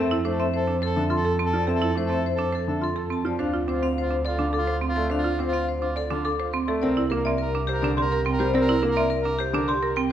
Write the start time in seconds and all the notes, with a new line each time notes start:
Already playing: F2 C4 A4 E5
0.11 E4
0.25 A3 D4 A4 C5
0.40 C4 E5
0.54 A4 C5
0.68 D4
0.82 A4 C5
0.96 D3 E5
1.10 F4 A4 C6
1.15 A4
1.25 A4
1.39 C4 A5
1.46 A4
1.53 F3 F4 D5
1.67 C4 A4 E5
1.75 A4
1.82 E4
1.95 A3 D4 C5
2.05 A4
2.10 C4 E5
2.26 C5
2.35 D4 A4
2.52 A4 C5
2.64 D3 A4
2.69 E5
2.81 F4 A4 C6
2.94 A4
3.10 C4 A5
3.24 F3 F4 D5
3.38 D2 D4 F4 C5 F5
3.53 F4
3.67 C4 D4 F4 C5
3.83 C4 F5
3.98 F4 C5
4.11 D4
4.25 F4 A4 D5
4.39 D3 D4 F5
4.53 A4 D6
4.58 F4
4.67 C5
4.81 C4 C6
4.88 F4
4.96 A3 A4 D5
5.10 D4 C5 F5
5.18 F4
5.24 F4
5.39 C4 D4 C5
5.47 F4
5.53 C4 F5
5.68 C5
5.78 F4
5.82 D4
5.96 A4 D5
6.08 D3 D4 F4 F5
6.25 A4 D6
6.38 F4 C5
6.53 C4 C6
6.68 A3 A4 D5
6.82 C2 C4 A#4 D5
6.97 E4
7.10 A#3 D4 A#4
7.25 C4 D5 E5
7.38 A#4
7.55 D4
7.67 G4 C5
7.72 A#4
7.82 D3 D4 D5
7.97 G4 A#4 C6
8.12 A#4
8.25 C4 G5
8.31 A#4
8.39 G3 G4 C5
8.54 C4 A#4 D5
8.61 A#4
8.69 E4
8.82 A#3 D4 A#4
8.90 A#4
8.96 C4 D5 E5
9.10 A#4
9.21 A#4
9.25 D4
9.39 G4 C5
9.51 D3 D4 A#4 D5
9.68 G4 C6
9.81 A#4
9.96 C4 G5